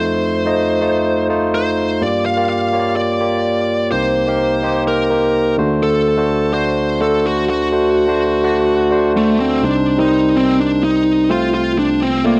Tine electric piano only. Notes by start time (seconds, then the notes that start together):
Already playing: F2 A3 D#4 F4 C5
0.46 A3 D#4 F4 D#5
0.81 A3 D#4 F4 C5
1.29 A3 D#4 F4 C5
2.01 G2 A#3 F4 G4 D5
2.37 A#3 F4 G4 D5
2.73 A#3 F4 G4 C#5
2.80 D5
3.20 A#3 F4 G4 D5
3.92 C2 C3 A#3 D#4 G4 C5
4.27 A#3 D#4 G4 A#4
4.63 A#3 D#4 G4 C5
5.10 A#3 D#4 G4 C5
5.58 D2 D3 A3 D4 F#4 C5
6.17 A3 D4 F#4 C5
6.53 A3 D4 F#4 C5
7.00 A3 D4 F#4 C5
7.49 D2 D3
7.72 A3 D4 F#4 C5
8.08 A3 D4 F#4 C5
8.43 A3 D4 F#4 D5
8.91 A3 D4 F#4 C5
9.62 C2 C3 G3 C4 D#4 C5
9.98 G3 C4 D#4 A#4
10.05 C5
11.29 C2 C3 A3 C4 F4 C5
12.24 A3 C4 F4 D5